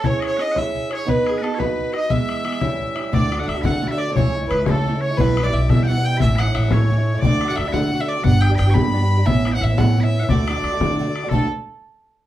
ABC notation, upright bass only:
X:1
M:6/8
L:1/8
Q:3/8=117
K:C#m
V:1 name="Upright bass" clef=bass
z6 | z6 | z6 | [K:D] D,,2 D,, D,3 |
C,,2 C,, C,3 | B,,,2 B,,, B,,3 | A,,,2 A,,, A,,3 | D,,2 D,, D,3 |
G,,,2 G,,, z3 | A,,,2 A,,, A,,3 | D,,2 D,, D,3 | D,, z4 z |]